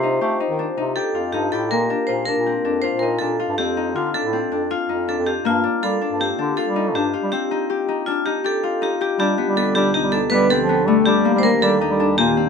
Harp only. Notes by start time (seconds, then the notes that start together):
Already playing: A#3 C4 F4
0.03 D#4
0.21 G4
0.40 D#4
0.59 D4
0.77 D#4
0.96 G4
1.15 F4
1.34 D#4
1.52 G4
1.71 A#3
1.90 D4
2.09 F4
2.28 D4
2.46 C4
2.65 D4
2.84 F4
3.02 D#4
3.21 D4
3.40 F4
3.59 C4
3.77 D#4
3.95 F4
4.14 D4
4.33 C4
4.52 D4
4.71 F4
4.89 D#4
5.08 D4
5.27 F4
5.45 A#3
5.64 D4
5.83 F4
6.01 D4
6.20 C4
6.39 D4
6.57 F4
6.76 D#4
6.95 D4
7.14 F4
7.32 C4
7.51 D#4
7.70 G4
7.88 D#4
8.07 D4
8.26 D#4
8.44 G4
8.63 F4
8.82 D#4
9.01 G4
9.19 D4
9.38 B3
9.57 B3
9.75 D4
9.94 D#4
10.13 D4
10.31 B3
10.50 C4
10.69 B3
10.88 A3
11.06 D4
11.25 A#3
11.44 A#3
11.62 D4
11.81 D#4
12.00 D4
12.18 A#3
12.37 C4